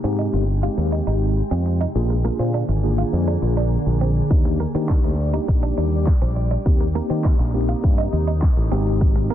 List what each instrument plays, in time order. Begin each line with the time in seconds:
Already playing: ambient pad C3 G#3 G4
0.04 fingered electric bass G#2, tine electric piano G#3 C4 D#4 G4, clean electric guitar C4
0.19 clean electric guitar D#4
0.33 fingered electric bass G1, muted clean electric guitar stroke
0.63 tine electric piano G#3 C4 D#4 G4, clean electric guitar F4
0.78 fingered electric bass D#2, muted clean electric guitar stroke
0.92 clean electric guitar D#4
1.07 fingered electric bass G#1, clean electric guitar D#4
1.51 fingered electric bass F2, clean electric guitar C4
1.66 muted clean electric guitar stroke
1.81 clean electric guitar D#4
1.95 fingered electric bass A#1, ambient pad D3 A#3 G#4, tine electric piano A#3 D4 F4 G#4
2.10 muted clean electric guitar stroke
2.24 tine electric piano A#3 D4 F4 G#4, clean electric guitar A#3
2.39 fingered electric bass A#2, clean electric guitar C4
2.54 clean electric guitar D4
2.69 fingered electric bass G#1, muted clean electric guitar stroke
2.83 tine electric piano A#3 D4 F4 G#4
2.98 clean electric guitar F4
3.13 fingered electric bass F2
3.28 clean electric guitar D4
3.42 fingered electric bass A#1, muted clean electric guitar stroke
3.57 clean electric guitar D4
3.86 fingered electric bass A#1
4.01 clean electric guitar C4
4.30 fingered electric bass D#2, ambient pad G3 G4 D5, tine electric piano A#3 D4 D#4 G4, kick, closed hi-hat
4.45 muted clean electric guitar stroke, closed hi-hat
4.60 clean electric guitar A#3
4.75 fingered electric bass D#3, tine electric piano A#3 D4 D#4 G4, clean electric guitar C4, closed hi-hat
4.89 clean electric guitar D4, kick, snare, clap, closed hi-hat
5.04 fingered electric bass D2, muted clean electric guitar stroke, closed hi-hat
5.33 tine electric piano A#3 D4 D#4 G4, clean electric guitar D#4, closed hi-hat
5.48 fingered electric bass A#1, muted clean electric guitar stroke, kick, closed hi-hat
5.63 clean electric guitar D4, closed hi-hat
5.78 fingered electric bass D#2, clean electric guitar D4
5.92 closed hi-hat
6.07 kick, snare, clap, closed hi-hat
6.22 fingered electric bass A#1, clean electric guitar C4, closed hi-hat
6.36 muted clean electric guitar stroke
6.51 clean electric guitar D4, closed hi-hat
6.66 fingered electric bass D#2, ambient pad C3 A#3 D#4, tine electric piano A#3 C4 D#4 G4, kick, closed hi-hat, shaker
6.80 muted clean electric guitar stroke, closed hi-hat, shaker
6.95 tine electric piano A#3 C4 D#4 G4, clean electric guitar A#3, shaker
7.10 fingered electric bass D#3, clean electric guitar C4, closed hi-hat, shaker
7.25 clean electric guitar D#4, kick, snare, clap, closed hi-hat, shaker
7.39 fingered electric bass A#1, muted clean electric guitar stroke, closed hi-hat, shaker
7.54 tine electric piano A#3 C4 D#4 G4, shaker
7.69 clean electric guitar F4, closed hi-hat, shaker
7.84 fingered electric bass G2, kick, closed hi-hat, shaker
7.98 clean electric guitar D#4, closed hi-hat, shaker
8.13 fingered electric bass D#2, muted clean electric guitar stroke, shaker
8.27 clean electric guitar D#4, closed hi-hat, shaker
8.42 kick, snare, clap, closed hi-hat, shaker
8.57 fingered electric bass A1, closed hi-hat, shaker
8.71 fingered electric bass G#1, tine electric piano G#3 C4 D#4 G4, ambient pad G#3 G4, clean electric guitar C4, shaker
8.86 closed hi-hat, shaker
9.01 kick, closed hi-hat, shaker
9.16 muted clean electric guitar stroke, closed hi-hat, shaker
9.30 clean electric guitar A#3, shaker